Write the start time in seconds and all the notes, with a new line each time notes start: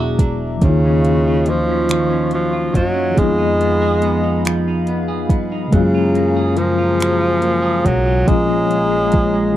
Already playing: E1 E3 F#3 G#3 B3 D4 E4 G#4 E5 A#5 D6
0.00 F#4
0.19 D4, kick, closed hi-hat
0.57 F3 A#3
0.62 D#2 C#3 D#3 C#4 F4 D#5 F5 C#6, kick, closed hi-hat
0.66 D#4 F4
0.86 C#4
1.05 F#3, closed hi-hat
1.27 F4
1.46 F3 F#3, closed hi-hat
1.69 C#4
1.89 D#3, finger snap, closed hi-hat
2.10 C#4
2.31 F3 F#3, closed hi-hat
2.53 F4
2.73 F#2 F#3, kick, closed hi-hat
2.94 C#4
3.12 F3 G#4
3.17 F2 F3 G#3 B3 D#4 G#4 B5, kick, closed hi-hat
3.23 F4
3.38 D#4
3.60 B3, closed hi-hat
3.82 G#4
4.02 B3, closed hi-hat
4.24 D#4
4.45 F3, finger snap, closed hi-hat
4.68 D#4
4.87 B3, closed hi-hat
5.08 G#4
5.29 G2 B3, kick, closed hi-hat
5.52 D#4
5.67 C#3 G#3
5.72 F#2 C#3 F#3 A#3 C#4 G#5 A#5, kick, closed hi-hat
5.78 F4
5.95 F4
6.15 A#3, closed hi-hat
6.37 G#4
6.57 F3 A#3, closed hi-hat
6.78 F4
7.00 F#3, finger snap, closed hi-hat
7.21 F4
7.41 A#3, closed hi-hat
7.62 G#4
7.85 B1 F#3 A#3, kick, closed hi-hat
8.06 F4
8.26 A#1 A#2 F3 G#3 A#3 C#5 F5, kick, closed hi-hat
8.30 C#4 F4
8.48 G#3
8.69 F3, closed hi-hat
8.90 C#4
9.12 F3, kick, closed hi-hat
9.34 G#3
9.53 E3